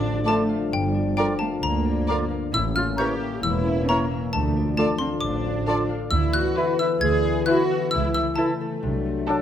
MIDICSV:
0, 0, Header, 1, 13, 480
1, 0, Start_track
1, 0, Key_signature, -1, "minor"
1, 0, Tempo, 450789
1, 769, Time_signature, 4, 2, 24, 8
1, 10027, End_track
2, 0, Start_track
2, 0, Title_t, "Xylophone"
2, 0, Program_c, 0, 13
2, 0, Note_on_c, 0, 86, 83
2, 257, Note_off_c, 0, 86, 0
2, 297, Note_on_c, 0, 81, 66
2, 742, Note_off_c, 0, 81, 0
2, 781, Note_on_c, 0, 79, 69
2, 1226, Note_off_c, 0, 79, 0
2, 1246, Note_on_c, 0, 79, 61
2, 1475, Note_off_c, 0, 79, 0
2, 1479, Note_on_c, 0, 81, 58
2, 1711, Note_off_c, 0, 81, 0
2, 1736, Note_on_c, 0, 82, 76
2, 2416, Note_off_c, 0, 82, 0
2, 2705, Note_on_c, 0, 88, 80
2, 2925, Note_off_c, 0, 88, 0
2, 2935, Note_on_c, 0, 89, 80
2, 3161, Note_off_c, 0, 89, 0
2, 3175, Note_on_c, 0, 91, 66
2, 3624, Note_off_c, 0, 91, 0
2, 3655, Note_on_c, 0, 88, 71
2, 4103, Note_off_c, 0, 88, 0
2, 4140, Note_on_c, 0, 82, 66
2, 4583, Note_off_c, 0, 82, 0
2, 4610, Note_on_c, 0, 81, 66
2, 5055, Note_off_c, 0, 81, 0
2, 5083, Note_on_c, 0, 81, 65
2, 5308, Note_off_c, 0, 81, 0
2, 5308, Note_on_c, 0, 84, 59
2, 5539, Note_off_c, 0, 84, 0
2, 5543, Note_on_c, 0, 86, 70
2, 6229, Note_off_c, 0, 86, 0
2, 6501, Note_on_c, 0, 88, 80
2, 6733, Note_off_c, 0, 88, 0
2, 6746, Note_on_c, 0, 90, 90
2, 7197, Note_off_c, 0, 90, 0
2, 7232, Note_on_c, 0, 88, 73
2, 7459, Note_off_c, 0, 88, 0
2, 7465, Note_on_c, 0, 92, 89
2, 7918, Note_off_c, 0, 92, 0
2, 7942, Note_on_c, 0, 90, 73
2, 8396, Note_off_c, 0, 90, 0
2, 8422, Note_on_c, 0, 88, 76
2, 8653, Note_off_c, 0, 88, 0
2, 8672, Note_on_c, 0, 88, 82
2, 8897, Note_on_c, 0, 81, 59
2, 8898, Note_off_c, 0, 88, 0
2, 10027, Note_off_c, 0, 81, 0
2, 10027, End_track
3, 0, Start_track
3, 0, Title_t, "Flute"
3, 0, Program_c, 1, 73
3, 275, Note_on_c, 1, 81, 50
3, 364, Note_off_c, 1, 81, 0
3, 1253, Note_on_c, 1, 82, 48
3, 1340, Note_off_c, 1, 82, 0
3, 2216, Note_on_c, 1, 82, 47
3, 2302, Note_off_c, 1, 82, 0
3, 3159, Note_on_c, 1, 82, 49
3, 3248, Note_off_c, 1, 82, 0
3, 4143, Note_on_c, 1, 82, 51
3, 4228, Note_off_c, 1, 82, 0
3, 5082, Note_on_c, 1, 81, 48
3, 5169, Note_off_c, 1, 81, 0
3, 6040, Note_on_c, 1, 81, 53
3, 6126, Note_off_c, 1, 81, 0
3, 6999, Note_on_c, 1, 76, 53
3, 7086, Note_off_c, 1, 76, 0
3, 7963, Note_on_c, 1, 76, 50
3, 8049, Note_off_c, 1, 76, 0
3, 8911, Note_on_c, 1, 81, 53
3, 8998, Note_off_c, 1, 81, 0
3, 9884, Note_on_c, 1, 81, 52
3, 9969, Note_off_c, 1, 81, 0
3, 10027, End_track
4, 0, Start_track
4, 0, Title_t, "Violin section"
4, 0, Program_c, 2, 48
4, 292, Note_on_c, 2, 77, 48
4, 377, Note_off_c, 2, 77, 0
4, 1241, Note_on_c, 2, 77, 48
4, 1326, Note_off_c, 2, 77, 0
4, 2230, Note_on_c, 2, 77, 51
4, 2316, Note_off_c, 2, 77, 0
4, 3192, Note_on_c, 2, 76, 44
4, 3277, Note_off_c, 2, 76, 0
4, 4145, Note_on_c, 2, 76, 47
4, 4230, Note_off_c, 2, 76, 0
4, 5087, Note_on_c, 2, 77, 44
4, 5172, Note_off_c, 2, 77, 0
4, 6028, Note_on_c, 2, 77, 50
4, 6113, Note_off_c, 2, 77, 0
4, 7005, Note_on_c, 2, 76, 57
4, 7359, Note_off_c, 2, 76, 0
4, 7960, Note_on_c, 2, 76, 59
4, 8317, Note_off_c, 2, 76, 0
4, 8904, Note_on_c, 2, 76, 62
4, 9267, Note_off_c, 2, 76, 0
4, 9883, Note_on_c, 2, 78, 66
4, 10027, Note_off_c, 2, 78, 0
4, 10027, End_track
5, 0, Start_track
5, 0, Title_t, "Oboe"
5, 0, Program_c, 3, 68
5, 283, Note_on_c, 3, 74, 53
5, 453, Note_off_c, 3, 74, 0
5, 1252, Note_on_c, 3, 74, 51
5, 1422, Note_off_c, 3, 74, 0
5, 2221, Note_on_c, 3, 74, 49
5, 2391, Note_off_c, 3, 74, 0
5, 3172, Note_on_c, 3, 73, 47
5, 3342, Note_off_c, 3, 73, 0
5, 4138, Note_on_c, 3, 73, 52
5, 4308, Note_off_c, 3, 73, 0
5, 5095, Note_on_c, 3, 74, 45
5, 5265, Note_off_c, 3, 74, 0
5, 6044, Note_on_c, 3, 74, 50
5, 6215, Note_off_c, 3, 74, 0
5, 7003, Note_on_c, 3, 71, 52
5, 7173, Note_off_c, 3, 71, 0
5, 7966, Note_on_c, 3, 71, 54
5, 8137, Note_off_c, 3, 71, 0
5, 8926, Note_on_c, 3, 69, 44
5, 9096, Note_off_c, 3, 69, 0
5, 9890, Note_on_c, 3, 69, 49
5, 10027, Note_off_c, 3, 69, 0
5, 10027, End_track
6, 0, Start_track
6, 0, Title_t, "Violin section"
6, 0, Program_c, 4, 48
6, 263, Note_on_c, 4, 74, 50
6, 349, Note_off_c, 4, 74, 0
6, 1252, Note_on_c, 4, 74, 49
6, 1337, Note_off_c, 4, 74, 0
6, 2206, Note_on_c, 4, 74, 50
6, 2292, Note_off_c, 4, 74, 0
6, 3176, Note_on_c, 4, 73, 48
6, 3261, Note_off_c, 4, 73, 0
6, 4141, Note_on_c, 4, 73, 45
6, 4226, Note_off_c, 4, 73, 0
6, 5108, Note_on_c, 4, 74, 49
6, 5193, Note_off_c, 4, 74, 0
6, 6059, Note_on_c, 4, 74, 53
6, 6144, Note_off_c, 4, 74, 0
6, 7004, Note_on_c, 4, 71, 61
6, 7358, Note_off_c, 4, 71, 0
6, 7960, Note_on_c, 4, 71, 58
6, 8316, Note_off_c, 4, 71, 0
6, 8928, Note_on_c, 4, 69, 55
6, 9280, Note_off_c, 4, 69, 0
6, 9890, Note_on_c, 4, 69, 62
6, 10027, Note_off_c, 4, 69, 0
6, 10027, End_track
7, 0, Start_track
7, 0, Title_t, "Viola section"
7, 0, Program_c, 5, 48
7, 302, Note_on_c, 5, 69, 45
7, 387, Note_off_c, 5, 69, 0
7, 1265, Note_on_c, 5, 70, 50
7, 1350, Note_off_c, 5, 70, 0
7, 2230, Note_on_c, 5, 70, 43
7, 2315, Note_off_c, 5, 70, 0
7, 3192, Note_on_c, 5, 70, 44
7, 3277, Note_off_c, 5, 70, 0
7, 4150, Note_on_c, 5, 70, 48
7, 4235, Note_off_c, 5, 70, 0
7, 5096, Note_on_c, 5, 69, 47
7, 5181, Note_off_c, 5, 69, 0
7, 6048, Note_on_c, 5, 69, 50
7, 6133, Note_off_c, 5, 69, 0
7, 7004, Note_on_c, 5, 64, 58
7, 7358, Note_off_c, 5, 64, 0
7, 7973, Note_on_c, 5, 64, 57
7, 8323, Note_off_c, 5, 64, 0
7, 8929, Note_on_c, 5, 64, 60
7, 9281, Note_off_c, 5, 64, 0
7, 9878, Note_on_c, 5, 62, 62
7, 10027, Note_off_c, 5, 62, 0
7, 10027, End_track
8, 0, Start_track
8, 0, Title_t, "Harp"
8, 0, Program_c, 6, 46
8, 0, Note_on_c, 6, 50, 53
8, 0, Note_on_c, 6, 57, 54
8, 0, Note_on_c, 6, 69, 46
8, 0, Note_on_c, 6, 77, 49
8, 45, Note_on_c, 6, 62, 47
8, 267, Note_off_c, 6, 69, 0
8, 280, Note_on_c, 6, 69, 49
8, 507, Note_off_c, 6, 77, 0
8, 520, Note_on_c, 6, 77, 48
8, 761, Note_on_c, 6, 43, 50
8, 786, Note_off_c, 6, 69, 0
8, 791, Note_off_c, 6, 57, 0
8, 794, Note_off_c, 6, 50, 0
8, 989, Note_off_c, 6, 62, 0
8, 1002, Note_on_c, 6, 62, 42
8, 1243, Note_on_c, 6, 70, 44
8, 1476, Note_off_c, 6, 77, 0
8, 1489, Note_on_c, 6, 77, 51
8, 1724, Note_on_c, 6, 50, 47
8, 1954, Note_off_c, 6, 62, 0
8, 1967, Note_on_c, 6, 62, 45
8, 2202, Note_off_c, 6, 70, 0
8, 2215, Note_on_c, 6, 70, 46
8, 2440, Note_off_c, 6, 77, 0
8, 2453, Note_on_c, 6, 77, 50
8, 2692, Note_on_c, 6, 45, 49
8, 2712, Note_off_c, 6, 50, 0
8, 2712, Note_off_c, 6, 62, 0
8, 2714, Note_off_c, 6, 43, 0
8, 2715, Note_off_c, 6, 77, 0
8, 2934, Note_on_c, 6, 61, 46
8, 3163, Note_off_c, 6, 70, 0
8, 3175, Note_on_c, 6, 70, 46
8, 3409, Note_on_c, 6, 76, 49
8, 3651, Note_on_c, 6, 52, 49
8, 3883, Note_off_c, 6, 61, 0
8, 3895, Note_on_c, 6, 61, 47
8, 4125, Note_off_c, 6, 70, 0
8, 4137, Note_on_c, 6, 70, 46
8, 4365, Note_off_c, 6, 76, 0
8, 4377, Note_on_c, 6, 76, 49
8, 4624, Note_on_c, 6, 50, 51
8, 4630, Note_off_c, 6, 52, 0
8, 4632, Note_off_c, 6, 45, 0
8, 4633, Note_off_c, 6, 61, 0
8, 4634, Note_off_c, 6, 70, 0
8, 4635, Note_off_c, 6, 76, 0
8, 4858, Note_on_c, 6, 62, 48
8, 5096, Note_on_c, 6, 69, 47
8, 5330, Note_on_c, 6, 77, 50
8, 5559, Note_on_c, 6, 57, 47
8, 5790, Note_off_c, 6, 62, 0
8, 5802, Note_on_c, 6, 62, 48
8, 6031, Note_off_c, 6, 69, 0
8, 6043, Note_on_c, 6, 69, 50
8, 6262, Note_off_c, 6, 77, 0
8, 6275, Note_on_c, 6, 77, 50
8, 6506, Note_off_c, 6, 50, 0
8, 6518, Note_on_c, 6, 50, 57
8, 6537, Note_off_c, 6, 77, 0
8, 6538, Note_off_c, 6, 57, 0
8, 6541, Note_off_c, 6, 69, 0
8, 6749, Note_on_c, 6, 59, 44
8, 6992, Note_on_c, 6, 71, 46
8, 7228, Note_on_c, 6, 76, 50
8, 7463, Note_off_c, 6, 50, 0
8, 7476, Note_on_c, 6, 50, 57
8, 7701, Note_off_c, 6, 59, 0
8, 7714, Note_on_c, 6, 59, 47
8, 7948, Note_off_c, 6, 71, 0
8, 7961, Note_on_c, 6, 71, 46
8, 8189, Note_off_c, 6, 76, 0
8, 8202, Note_on_c, 6, 76, 52
8, 8445, Note_on_c, 6, 49, 56
8, 8456, Note_off_c, 6, 50, 0
8, 8456, Note_off_c, 6, 59, 0
8, 8456, Note_off_c, 6, 62, 0
8, 8459, Note_off_c, 6, 71, 0
8, 8690, Note_on_c, 6, 57, 46
8, 8912, Note_off_c, 6, 76, 0
8, 8925, Note_on_c, 6, 76, 49
8, 9167, Note_on_c, 6, 69, 50
8, 9399, Note_on_c, 6, 48, 61
8, 9420, Note_off_c, 6, 49, 0
8, 9420, Note_off_c, 6, 76, 0
8, 9630, Note_off_c, 6, 57, 0
8, 9643, Note_on_c, 6, 57, 48
8, 9875, Note_on_c, 6, 74, 46
8, 10027, Note_off_c, 6, 48, 0
8, 10027, Note_off_c, 6, 57, 0
8, 10027, Note_off_c, 6, 69, 0
8, 10027, Note_off_c, 6, 74, 0
8, 10027, End_track
9, 0, Start_track
9, 0, Title_t, "Clarinet"
9, 0, Program_c, 7, 71
9, 280, Note_on_c, 7, 65, 50
9, 450, Note_off_c, 7, 65, 0
9, 1264, Note_on_c, 7, 65, 45
9, 1434, Note_off_c, 7, 65, 0
9, 2235, Note_on_c, 7, 65, 46
9, 2404, Note_off_c, 7, 65, 0
9, 3193, Note_on_c, 7, 64, 46
9, 3363, Note_off_c, 7, 64, 0
9, 4160, Note_on_c, 7, 64, 46
9, 4327, Note_off_c, 7, 64, 0
9, 5085, Note_on_c, 7, 65, 47
9, 5256, Note_off_c, 7, 65, 0
9, 6041, Note_on_c, 7, 65, 53
9, 6212, Note_off_c, 7, 65, 0
9, 6997, Note_on_c, 7, 64, 51
9, 7167, Note_off_c, 7, 64, 0
9, 7952, Note_on_c, 7, 64, 53
9, 8123, Note_off_c, 7, 64, 0
9, 8919, Note_on_c, 7, 64, 53
9, 9089, Note_off_c, 7, 64, 0
9, 9892, Note_on_c, 7, 62, 48
9, 10027, Note_off_c, 7, 62, 0
9, 10027, End_track
10, 0, Start_track
10, 0, Title_t, "Cello section"
10, 0, Program_c, 8, 48
10, 0, Note_on_c, 8, 62, 74
10, 278, Note_on_c, 8, 57, 59
10, 283, Note_off_c, 8, 62, 0
10, 756, Note_off_c, 8, 57, 0
10, 769, Note_on_c, 8, 55, 54
10, 1239, Note_off_c, 8, 55, 0
10, 1252, Note_on_c, 8, 55, 55
10, 1337, Note_off_c, 8, 55, 0
10, 1493, Note_on_c, 8, 57, 58
10, 1578, Note_off_c, 8, 57, 0
10, 1731, Note_on_c, 8, 58, 61
10, 2442, Note_off_c, 8, 58, 0
10, 2694, Note_on_c, 8, 64, 66
10, 2779, Note_off_c, 8, 64, 0
10, 2940, Note_on_c, 8, 65, 58
10, 3025, Note_off_c, 8, 65, 0
10, 3178, Note_on_c, 8, 67, 55
10, 3650, Note_off_c, 8, 67, 0
10, 3664, Note_on_c, 8, 64, 69
10, 4132, Note_off_c, 8, 64, 0
10, 4145, Note_on_c, 8, 58, 63
10, 4619, Note_off_c, 8, 58, 0
10, 4621, Note_on_c, 8, 57, 53
10, 5075, Note_off_c, 8, 57, 0
10, 5088, Note_on_c, 8, 57, 52
10, 5173, Note_off_c, 8, 57, 0
10, 5320, Note_on_c, 8, 60, 58
10, 5405, Note_off_c, 8, 60, 0
10, 5560, Note_on_c, 8, 62, 55
10, 6266, Note_off_c, 8, 62, 0
10, 6513, Note_on_c, 8, 64, 64
10, 6739, Note_off_c, 8, 64, 0
10, 6751, Note_on_c, 8, 66, 66
10, 7234, Note_off_c, 8, 66, 0
10, 7235, Note_on_c, 8, 64, 63
10, 7320, Note_off_c, 8, 64, 0
10, 7476, Note_on_c, 8, 68, 74
10, 7948, Note_off_c, 8, 68, 0
10, 7960, Note_on_c, 8, 66, 71
10, 8430, Note_off_c, 8, 66, 0
10, 8437, Note_on_c, 8, 64, 71
10, 8661, Note_off_c, 8, 64, 0
10, 8674, Note_on_c, 8, 64, 70
10, 8759, Note_off_c, 8, 64, 0
10, 8916, Note_on_c, 8, 57, 56
10, 10027, Note_off_c, 8, 57, 0
10, 10027, End_track
11, 0, Start_track
11, 0, Title_t, "French horn section"
11, 0, Program_c, 10, 60
11, 0, Note_on_c, 10, 53, 63
11, 0, Note_on_c, 10, 62, 69
11, 2653, Note_off_c, 10, 53, 0
11, 2653, Note_off_c, 10, 62, 0
11, 2696, Note_on_c, 10, 58, 61
11, 2697, Note_on_c, 10, 61, 57
11, 4576, Note_off_c, 10, 58, 0
11, 4577, Note_off_c, 10, 61, 0
11, 4620, Note_on_c, 10, 62, 61
11, 4625, Note_on_c, 10, 53, 54
11, 6316, Note_off_c, 10, 53, 0
11, 6316, Note_off_c, 10, 62, 0
11, 6497, Note_on_c, 10, 52, 61
11, 6501, Note_on_c, 10, 64, 64
11, 9342, Note_off_c, 10, 52, 0
11, 9344, Note_off_c, 10, 64, 0
11, 9388, Note_on_c, 10, 54, 55
11, 9399, Note_on_c, 10, 62, 55
11, 10027, Note_off_c, 10, 54, 0
11, 10027, Note_off_c, 10, 62, 0
11, 10027, End_track
12, 0, Start_track
12, 0, Title_t, "Bassoon"
12, 0, Program_c, 11, 70
12, 282, Note_on_c, 11, 50, 51
12, 452, Note_off_c, 11, 50, 0
12, 1268, Note_on_c, 11, 50, 46
12, 1438, Note_off_c, 11, 50, 0
12, 2224, Note_on_c, 11, 50, 48
12, 2395, Note_off_c, 11, 50, 0
12, 3184, Note_on_c, 11, 52, 47
12, 3354, Note_off_c, 11, 52, 0
12, 4143, Note_on_c, 11, 52, 50
12, 4314, Note_off_c, 11, 52, 0
12, 5091, Note_on_c, 11, 50, 45
12, 5262, Note_off_c, 11, 50, 0
12, 6037, Note_on_c, 11, 50, 47
12, 6208, Note_off_c, 11, 50, 0
12, 7006, Note_on_c, 11, 52, 49
12, 7176, Note_off_c, 11, 52, 0
12, 7959, Note_on_c, 11, 52, 54
12, 8129, Note_off_c, 11, 52, 0
12, 8927, Note_on_c, 11, 52, 46
12, 9097, Note_off_c, 11, 52, 0
12, 9895, Note_on_c, 11, 54, 57
12, 10027, Note_off_c, 11, 54, 0
12, 10027, End_track
13, 0, Start_track
13, 0, Title_t, "Double bass section"
13, 0, Program_c, 12, 48
13, 0, Note_on_c, 12, 33, 61
13, 199, Note_off_c, 12, 33, 0
13, 770, Note_on_c, 12, 31, 62
13, 1173, Note_off_c, 12, 31, 0
13, 1733, Note_on_c, 12, 38, 60
13, 2137, Note_off_c, 12, 38, 0
13, 2698, Note_on_c, 12, 33, 63
13, 3099, Note_off_c, 12, 33, 0
13, 3653, Note_on_c, 12, 28, 59
13, 4056, Note_off_c, 12, 28, 0
13, 4609, Note_on_c, 12, 38, 66
13, 5008, Note_off_c, 12, 38, 0
13, 5562, Note_on_c, 12, 33, 59
13, 5963, Note_off_c, 12, 33, 0
13, 6517, Note_on_c, 12, 38, 71
13, 6897, Note_off_c, 12, 38, 0
13, 7478, Note_on_c, 12, 38, 65
13, 7858, Note_off_c, 12, 38, 0
13, 8437, Note_on_c, 12, 37, 68
13, 8816, Note_off_c, 12, 37, 0
13, 9399, Note_on_c, 12, 36, 66
13, 9778, Note_off_c, 12, 36, 0
13, 10027, End_track
0, 0, End_of_file